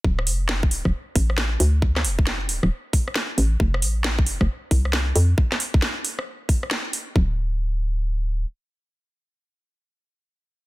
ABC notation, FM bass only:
X:1
M:4/4
L:1/16
Q:"Swing 16ths" 1/4=135
K:Dm
V:1 name="FM bass" clef=bass
D,,,2 F,,,4 D,,, D,,, z2 A,,,4 D,,2- | D,,2 F,,,4 D,,, D,,, z6 A,,,2 | F,,,2 A,,,4 F,,, F,,, z2 C,,4 F,,2 | z16 |
D,,,12 z4 | z16 |]